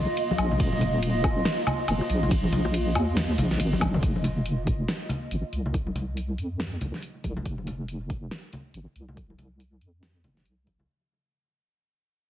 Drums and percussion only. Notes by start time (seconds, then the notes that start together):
0.17 closed hi-hat, ride
0.31 high conga
0.38 closed hi-hat, high conga, low woodblock
0.51 high conga, low conga
0.60 kick, closed hi-hat, ride
0.72 high conga
0.81 closed hi-hat, low conga
1.03 closed hi-hat, ride
1.24 kick, closed hi-hat, high bongo, low woodblock
1.45 snare, closed hi-hat, ride
1.67 closed hi-hat, low conga, low woodblock
1.79 high bongo
1.88 closed hi-hat, ride, low woodblock
2.01 high bongo
2.10 closed hi-hat
2.23 low conga
2.31 kick, closed hi-hat, ride
2.44 high conga
2.52 closed hi-hat, low conga
2.65 high bongo
2.74 closed hi-hat, ride
2.95 closed hi-hat, high bongo, low woodblock
3.17 snare, closed hi-hat, ride
3.38 closed hi-hat, low conga
3.51 snare
3.60 closed hi-hat, ride
3.73 high conga
3.81 kick, closed hi-hat, high tom, high conga, low woodblock
3.94 mid tom, high conga, low conga
4.03 kick, closed hi-hat
4.16 high conga
4.24 closed hi-hat, low conga
4.46 closed hi-hat
4.67 kick, closed hi-hat
4.88 snare, closed hi-hat
5.09 closed hi-hat, low conga
5.31 closed hi-hat
5.53 closed hi-hat
5.66 low conga
5.74 kick, closed hi-hat
5.87 high conga
5.95 closed hi-hat, low conga
6.17 closed hi-hat
6.38 closed hi-hat
6.60 snare, closed hi-hat
6.81 closed hi-hat, low conga
6.94 snare
7.03 closed hi-hat
7.24 kick, closed hi-hat, high conga
7.37 high conga, low conga
7.46 kick, closed hi-hat
7.58 high conga
7.67 closed hi-hat, low conga
7.88 closed hi-hat
8.10 kick, closed hi-hat
8.31 snare, closed hi-hat
8.53 closed hi-hat, low conga
8.74 closed hi-hat
8.96 closed hi-hat
9.08 low conga
9.17 kick, closed hi-hat
9.30 high conga
9.38 closed hi-hat, low conga
9.60 closed hi-hat
9.81 closed hi-hat
10.03 snare, closed hi-hat
10.24 closed hi-hat, low conga
10.37 snare
10.46 closed hi-hat
10.67 kick, closed hi-hat, high conga
10.79 high conga, low conga